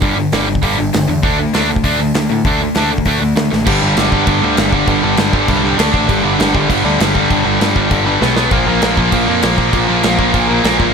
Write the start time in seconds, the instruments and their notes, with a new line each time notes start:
0.02 picked electric bass G1, distorted electric guitar G2 D3 G3, kick, open hi-hat
0.18 distorted electric guitar G2 D3
0.32 picked electric bass G1, distorted electric guitar G2 D3 G3, snare, open hi-hat
0.48 distorted electric guitar G2 D3
0.55 kick
0.63 picked electric bass G1, distorted electric guitar G2 D3 G3, kick, open hi-hat
0.78 picked electric bass G1, distorted electric guitar G2 D3
0.93 picked electric bass G1, distorted electric guitar G2 D3, snare, open hi-hat
1.08 picked electric bass E2, distorted electric guitar G2 D3
1.23 picked electric bass D2, distorted electric guitar D3 A3 D4, kick, open hi-hat
1.39 distorted electric guitar D3 A3
1.53 picked electric bass D2, distorted electric guitar D3 A3 D4, snare, open hi-hat
1.69 distorted electric guitar D3 A3
1.76 kick
1.84 picked electric bass D2, distorted electric guitar D3 A3 D4, kick, open hi-hat
1.99 picked electric bass D2, distorted electric guitar D3 A3
2.14 picked electric bass D2, distorted electric guitar D3 A3, snare, open hi-hat
2.29 picked electric bass A2, distorted electric guitar D3 A3
2.45 picked electric bass D2, distorted electric guitar D3 A3 D4, kick, open hi-hat
2.60 distorted electric guitar D3 A3
2.75 picked electric bass D2, distorted electric guitar D3 A3 D4, snare, open hi-hat
2.91 distorted electric guitar D3 A3
2.98 kick
3.05 picked electric bass D2, distorted electric guitar D3 A3 D4, kick, open hi-hat
3.21 picked electric bass D2, distorted electric guitar D3 A3
3.36 picked electric bass D2, distorted electric guitar D3 A3, snare, open hi-hat
3.51 picked electric bass A1, distorted electric guitar D3 A3, snare
3.66 picked electric bass G1, distorted electric guitar G2 D3 G3, kick, crash
3.82 picked electric bass G1, distorted electric guitar G2 D3 G3
3.97 picked electric bass G1, distorted electric guitar G2 D3 G3, snare, crash
4.12 picked electric bass G1, distorted electric guitar G2 D3 G3, kick
4.27 picked electric bass G1, distorted electric guitar G2 D3 G3, kick, crash
4.42 picked electric bass D2, distorted electric guitar G2 D3 G3
4.57 picked electric bass G1, distorted electric guitar G2 D3 G3, snare, crash
4.72 distorted electric guitar G2 D3 G3, kick
4.87 picked electric bass G1, distorted electric guitar G2 D3 G3, kick, crash
5.02 picked electric bass G1, distorted electric guitar G2 D3 G3
5.17 picked electric bass G1, distorted electric guitar G2 D3 G3, snare, crash
5.33 picked electric bass G1, distorted electric guitar G2 D3 G3, kick
5.48 picked electric bass C2, distorted electric guitar G2 D3 G3, kick, crash
5.63 distorted electric guitar G2 D3 G3
5.78 picked electric bass D2, distorted electric guitar D3 A3 D4, snare, crash
5.93 picked electric bass A1, distorted electric guitar D3 A3 D4, kick
6.07 picked electric bass G1, distorted electric guitar G2 D3 G3, kick, crash
6.23 picked electric bass G1, distorted electric guitar G2 D3 G3
6.39 picked electric bass G1, distorted electric guitar G2 D3 G3, snare, crash
6.54 picked electric bass G1, distorted electric guitar G2 D3 G3, kick
6.69 picked electric bass G1, distorted electric guitar G2 D3 G3, kick, crash
6.84 picked electric bass D2, distorted electric guitar G2 D3 G3
6.99 picked electric bass G1, distorted electric guitar G2 D3 G3, snare, crash
7.14 distorted electric guitar G2 D3 G3, kick
7.30 picked electric bass G1, distorted electric guitar G2 D3 G3, kick, crash
7.45 picked electric bass G1, distorted electric guitar G2 D3 G3
7.60 picked electric bass G1, distorted electric guitar G2 D3 G3, snare, crash
7.75 picked electric bass G1, distorted electric guitar G2 D3 G3, kick
7.90 picked electric bass G1, distorted electric guitar G2 D3 G3, kick, crash
8.06 distorted electric guitar G2 D3 G3
8.20 picked electric bass B1, distorted electric guitar B2 F#3 B3, snare
8.35 picked electric bass B1, distorted electric guitar B2 F#3 B3, snare
8.50 picked electric bass A#1, distorted electric guitar A#2 F3 A#3, kick, crash
8.67 picked electric bass A#1, distorted electric guitar A#2 F3 A#3
8.82 picked electric bass A#1, distorted electric guitar A#2 F3 A#3, snare, crash
8.97 picked electric bass A#1, distorted electric guitar A#2 F3 A#3, kick
9.12 picked electric bass A#1, distorted electric guitar A#2 F3 A#3, kick, crash
9.28 picked electric bass F2, distorted electric guitar A#2 F3 A#3
9.42 picked electric bass A#1, distorted electric guitar A#2 F3 A#3, snare, crash
9.58 distorted electric guitar A#2 F3 A#3, kick
9.73 picked electric bass A#1, distorted electric guitar A#2 F3 A#3, kick, crash
9.88 picked electric bass A#1, distorted electric guitar A#2 F3 A#3
10.03 picked electric bass A#1, distorted electric guitar A#2 F3 A#3, snare, crash
10.19 picked electric bass A#1, distorted electric guitar A#2 F3 A#3, kick
10.33 picked electric bass A#1, distorted electric guitar A#2 F3 A#3, kick, crash
10.49 distorted electric guitar A#2 F3 A#3
10.64 picked electric bass A#1, distorted electric guitar A#2 F3 A#3, snare, crash
10.79 picked electric bass G1, distorted electric guitar A#2 F3 A#3, kick